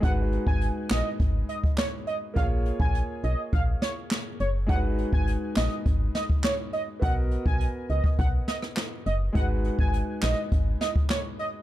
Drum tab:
HH |x-x-x---x-x-x-x-|x-x-x-x-x-x---x-|x-x-x-x-x-x-x-x-|x-x-x-x-x-x-x-x-|
CP |------x-----x---|------------x---|------x-----x---|------------x---|
SD |------o-----o---|----------o-o---|------o---o-o---|----------oro---|
BD |o--o----o--o----|o--o----o-------|o--o----o--o----|o--o---oo-------|

HH |x-x-x---x-x-x-x-|
CP |------x-----x---|
SD |------o---o-o---|
BD |o--o----o--o----|